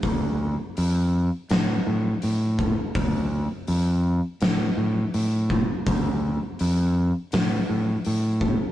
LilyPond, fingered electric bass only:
\new Staff \with { instrumentName = "Fingered electric bass" } { \clef bass \time 4/4 \key d \minor \tempo 4 = 82 d,4 f,4 a,8 a,8 a,4 | d,4 f,4 a,8 a,8 a,4 | d,4 f,4 a,8 a,8 a,4 | }